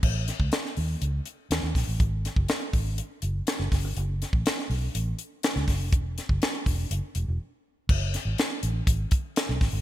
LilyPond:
<<
  \new Staff \with { instrumentName = "Fingered electric bass" } { \clef bass \time 4/4 \key fis \dorian \tempo 4 = 122 a,,8. cis,16 r8 dis,8 cis,8 r8 dis,16 dis,16 ais,,16 a,,16 | gis,,8. fis,,16 r8 gis,,8. r16 fis,,8 r16 fis,,16 fis,,16 g,,16 | fis,,8. a,,16 r8 b,,8 a,,8 r8. cis,16 fis,,16 eis,,16 | e,,8. fis,,16 r8 e,,8 fis,,16 r16 e,,16 e,,16 r4 |
fis,,8. gis,,16 r8 a,,8 gis,,8 r8. b,,16 gis,,16 g,,16 | }
  \new DrumStaff \with { instrumentName = "Drums" } \drummode { \time 4/4 <cymc bd>8 <hh sn>16 bd16 <hh sn>16 sn16 hho8 hh8 hh8 <hh sn>16 sn16 <hho bd sn>8 | <hh bd>8 <hh sn>16 bd16 <hh sn>8 <hho bd>8 hh8 hh8 <hh sn>16 sn16 <hho bd sn>8 | hh8 <hh sn>16 bd16 <hh sn>16 sn16 hho8 hh8 hh8 <hh sn>16 sn16 <hho bd sn>8 | <hh bd>8 <hh sn>16 bd16 <hh sn>8 <hho bd>8 hh8 hh8 r4 |
<cymc bd>8 <hh sn>8 <hh sn>8 hh8 <hh bd>8 <hh bd>8 <hh sn>16 sn16 <hho bd sn>8 | }
>>